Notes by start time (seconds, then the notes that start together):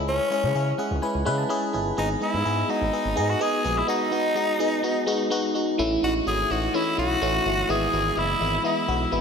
Already playing: C#2 G#3 C#4 E4 G#4
0.08 C#4
0.30 G#3 C#4 E4 G#4
0.43 C#3
0.54 C#3 G#3 C#4 E4 G#4
0.78 G#3 C#4 E4 G#4 F#5
0.91 C#2
1.02 G#3 C#4 E4 B4 G#5
1.14 C#2
1.25 C#3 G#3 C#4 E4 B4
1.38 A5
1.49 G#3 C#4 E4 G#4 B5
1.73 G1 G#3 C#4 E4 G#4
1.97 G#1 G#3 B3 D#4 G#4
2.20 G#3 B3 D#4 E4 G#4
2.33 G#2
2.44 G#2 G#3 B3 D#4 G#4
2.68 G#3 B3 D#4 F#4
2.81 G#1
2.92 G#3 B3 D#4 G#4
3.05 G#1
3.16 G#2 G#3 B3 D#4 G#4
3.30 F#4
3.40 G#3 B3 D#4 G#4
3.64 A#1 G#3 B3 D#4 G#4
3.78 E4
3.87 G#3 B3 D#4 F#4
4.11 G#3 B3 D#4 F#4
4.35 G#3 B3 D#4 F#4
4.59 G#3 B3 D#4 G#4
4.83 G#3 B3 D#4 F#4
5.06 G#3 B3 D#4 F#4
5.30 G#3 B3 D#4 F#4
5.54 G#3 B3 D#4 F#4
5.78 A1 E3 A3 C#4 E4
6.02 A1 E3 A3 C#4 D#4 F#4
6.26 G#1 E3 A3 C#4 F#4 G#4
6.50 A1 E3 A3 C#4 E4 F#4
6.73 E3 A3 C#4 E4
6.97 B1 E3 A3 C#4 E4 F#4
7.21 A1 E3 A3 C#4 E4
7.45 G1 E3 A3 C#4 E4
7.68 G#1 E3 G#3 B3 E4 G#4
7.92 G#1 E3 G#3 B3 E4
8.16 F#1 E3 G#3 B3 E4
8.40 G#1 E3 G#3 B3 E4
8.63 E3 G#3 B3 E4
8.87 B1 E3 G#3 B3 F#4
9.11 G#1 E3 G#3 B3 E4